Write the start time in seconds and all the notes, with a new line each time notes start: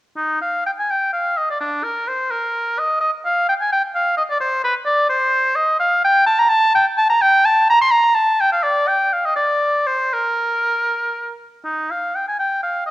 0.17 D#4
0.42 F5
0.66 G5
0.79 G#5
0.91 G5
1.13 F5
1.38 D#5
1.50 D5
1.61 D4
1.84 A#4
2.08 C5
2.31 A#4
2.79 D#5
3.01 D#5
3.26 F5
3.49 G5
3.61 G#5
3.72 G5
3.95 F5
4.18 D#5
4.31 D5
4.41 C5
4.64 B4
4.86 D5
5.09 C5
5.56 D#5
5.80 F5
6.05 G5
6.27 A5
6.40 A#5
6.49 A5
6.75 G5
6.98 A5
7.10 A#5
7.22 G5
7.45 A5
7.70 A#5
7.82 C6
7.92 A#5
8.15 A5
8.41 G5
8.52 F5
8.63 D5
8.88 G5
9.13 F5
9.25 D#5
9.36 D5
9.86 C5
10.13 A#4
11.65 D#4
11.91 F5
12.16 G5
12.28 G#5
12.39 G5
12.63 F5
12.87 D#5